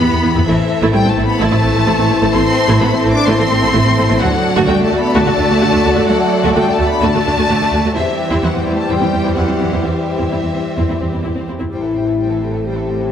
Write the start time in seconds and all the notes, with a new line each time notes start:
Already playing: E3 B3 E4 G4 B4 B5
0.12 E2 B3
0.23 E2 B3 E4
0.35 E2 B3 E4
0.47 A1 E3 A3 C4 E4 A4 C5 E5
0.82 A1 A3 E4
0.93 A1 G3 A3 E4 G5
1.05 A1 A3 C4
1.09 A5
1.16 A1 A3 E4
1.24 B3 B5
1.40 A1 A3 E4 A5
1.52 A1 A3 E4
1.64 A1 A3 C4
1.75 A1 A3 E4
1.86 A1 A3 E4
1.98 A1 A3 C4
2.10 A1 A3 E4
2.22 A1 A3 E4
2.34 A1 A3 C4 E4 C6
2.69 A1 A3 E4
2.80 A1 A3 B3 E4 B5
2.93 A1 A3 C4
2.97 C4 C6
3.04 A1 A3 E4
3.12 D4 D6
3.27 A1 A3 C4 E4 C6
3.40 A1 A3 E4
3.51 A1 A3 C4
3.63 A1 A3 E4
3.74 A1 A3 E4
3.86 A1 A3 C4
3.98 A1 A3 E4
4.10 A1 A3 E4
4.20 D2 D3 F#3 A3 D4 F#4 A4 D5 F#5
4.56 D2 A3 F#4
4.68 D2 G3 A3 F#4 G5
4.79 D2 A3 D4
4.83 A3 A5
4.91 D2 A3 F#4
4.99 B3 B5
5.15 D2 A3 F#4 A5
5.27 D2 A3 F#4
5.38 D2 A3 D4
5.50 D2 A3 F#4
5.62 D2 A3 F#4
5.73 D2 A3 D4
5.85 D2 A3 F#4
5.96 D2 A3 F#4
6.08 D2 F#3 A3 F#4 F#5
6.44 D2 A3 F#4
6.55 D2 G3 A3 F#4 G5
6.67 D2 A3 D4
6.71 A3 A5
6.79 D2 A3 F#4
6.88 B3 B5
7.01 D2 A3 F#4 A5
7.14 D2 A3 F#4
7.26 D2 A3 D4
7.37 D2 A3 F#4
7.49 D2 A3 F#4
7.61 D2 A3 D4
7.72 D2 A3 F#4
7.84 D2 A3 F#4
7.95 E2 E3 G3 C4 E4 G4 C5 E5
8.31 E2 C4 E4
8.43 E2 F#3 C4 E4 F#5
8.55 E2 G3 C4
8.61 G5
8.66 E2 C4 E4
8.74 A3 A5
8.89 E2 G3 C4 E4 G5
9.01 E2 C4 E4
9.13 E2 C4
9.24 E2 C4 E4
9.36 E2 F#3 C4 E4 F#5
9.48 E2 C4
9.60 E2 C4 E4
9.72 E2 C4 E4
9.84 E2 E3 C4 E4 E5
10.18 E2 C4 E4
10.31 E2 C4 E4
10.43 E2 C4
10.54 E2 C4 E4
10.77 E2 C4 E4
10.89 E2 C4 E4
11.01 E2 C4
11.12 E2 C4 E4
11.24 E2 C4 E4
11.35 E2 C4
11.48 E2 C4 E4
11.60 E2 C4 E4
11.71 A1 A2 E3 G3 C4 E4 C5 G5
11.83 E3 A4 E5
11.95 G3 C5 G5
12.07 E3 A4 E5
12.19 G3 C5 G5
12.30 E3 A4 E5
12.42 G3 A4 C5 G5
12.53 E3 A4 E5
12.65 G3 G4 C5 G5
12.77 E3 A4 E5
12.89 G3 C5 G5
13.00 E3 A4 E5